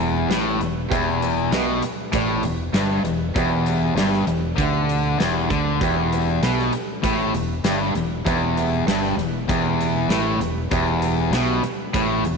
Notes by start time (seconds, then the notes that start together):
Already playing: E1 E2 G4 B4 E5
0.29 A1 A2 G4 B4 E5, snare, closed hi-hat
0.60 E1 E2, closed hi-hat
0.89 E1 E2 G4 B4 E5, kick, closed hi-hat
1.21 G4 B4 E5, closed hi-hat
1.50 B1 B2 G4 B4 E5, snare, closed hi-hat
1.81 muted fingered electric bass stroke, muted overdriven electric guitar stroke, muted distorted electric guitar stroke, closed hi-hat
2.12 A1 A2 G4 B4 D5, kick, closed hi-hat
2.42 E1 E2, closed hi-hat
2.73 G1 G2 G4 B4, snare, closed hi-hat
2.77 E5
3.04 E1 E2, closed hi-hat
3.35 E1 E2 G4 B4 E5, kick, closed hi-hat
3.66 G4 B4 E5, closed hi-hat
3.94 G1 G2 G4 B4 E5, snare, closed hi-hat
4.13 snare
4.27 E1 E2, closed hi-hat
4.56 D2 D3 G4 B4, kick, closed hi-hat
4.61 E5
4.89 closed hi-hat
5.18 E1 E2 G4 B4, snare, closed hi-hat
5.22 E5
5.50 D2 D3, kick, closed hi-hat
5.80 E1 E2 G4 B4 E5, kick, closed hi-hat
6.12 G4 B4 E5, closed hi-hat
6.42 B1 B2 G4 B4 E5, snare, closed hi-hat
6.59 snare
6.72 muted fingered electric bass stroke, muted distorted electric guitar stroke, muted overdriven electric guitar stroke, closed hi-hat
7.03 A1 A2 G4 B4 E5, kick, closed hi-hat
7.33 E1 E2, closed hi-hat
7.64 G1 G2 G4 B4 E5, snare, closed hi-hat
7.95 E1 E2, closed hi-hat
8.25 E1 E2 G4 B4 E5, kick, closed hi-hat
8.56 G4 B4 E5, closed hi-hat
8.86 G1 G2 G4 B4 E5, snare, closed hi-hat
9.04 snare
9.16 E1 E2, closed hi-hat
9.48 E1 E2 G4 B4 E5, kick, closed hi-hat
9.81 closed hi-hat
10.08 A1 A2 G4 B4 E5, snare, closed hi-hat
10.38 E1 E2, closed hi-hat
10.71 E1 E2 G4 B4 E5, kick, closed hi-hat
11.02 G4 B4 E5, closed hi-hat
11.30 B1 B2 G4, snare, closed hi-hat
11.35 B4 E5
11.63 muted distorted electric guitar stroke, muted overdriven electric guitar stroke, closed hi-hat
11.93 A1 A2 G4 B4 E5, kick, closed hi-hat
12.24 E1 E2, closed hi-hat